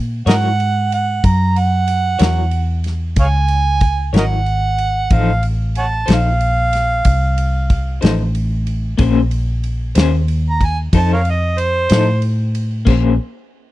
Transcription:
Already playing: A#2
0.26 G#2 F#3 E4 A#4 C#5 D#5 F#5, snare, ride
0.60 ride
0.92 F#5, ride
1.24 F#2 A#5, kick, ride
1.56 F#5, ride
1.87 ride
2.19 E2 F#3 E4 A#4 C#5, snare, ride
2.51 ride
2.84 snare, ride
3.16 C#2 C#5 F5 G#5, kick, ride
3.48 ride
3.80 kick, ride
4.13 G#1 F#3 E4 A#4 C#5, snare, ride
4.17 A#4 D#5 F#5
4.46 ride
4.78 ride
5.10 A1 F3 D#4 A4 C5 F5, kick, ride
5.43 ride
5.75 C#5 F#5 A5, ride
6.06 A#1 F3 D#4 A4 C5, ride
6.10 F5, snare
6.40 ride
6.73 snare, ride
7.05 C2, kick, ride
7.38 ride
7.70 kick, ride
8.01 A1 F3 D#4 A4 C5, snare, ride
8.35 ride
8.67 ride
8.98 A#1 A#3 C#4 G#4 C5, kick, ride
9.31 ride
9.64 ride
9.95 D#2 A#3 C#4 G#4 C5, snare, ride
10.28 ride
10.50 A#5
10.61 kick, ride
10.65 G#5
10.93 F2 F3 D#4 A4 C5 A5, kick, ride
11.13 A#4 C#5 F5
11.25 ride
11.30 D#5
11.58 C5, ride
11.89 A2 F3 D#4 A4 C5, snare, ride
12.22 ride
12.55 ride
12.85 A#1 A#3 C#4 G#4 C5, kick, crash

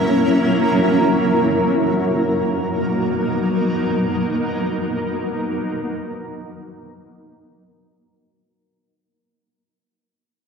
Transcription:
Already playing: F#3 A#3 C#4 E4 A#4
1.75 F#3 A#3 B3 D#4 A#4

